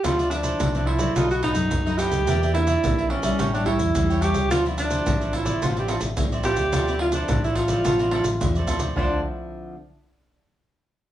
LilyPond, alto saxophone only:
\new Staff \with { instrumentName = "Alto saxophone" } { \time 4/4 \key d \minor \tempo 4 = 108 f'8 d'4 e'8 f'16 fis'16 dis'4 g'8~ | g'8 e'4 cis'8. d'16 e'4 g'8 | f'8 d'4 e'8 f'16 g'16 r4 g'8~ | g'8 f'16 d'8 e'16 f'2 r8 |
d'8 r2. r8 | }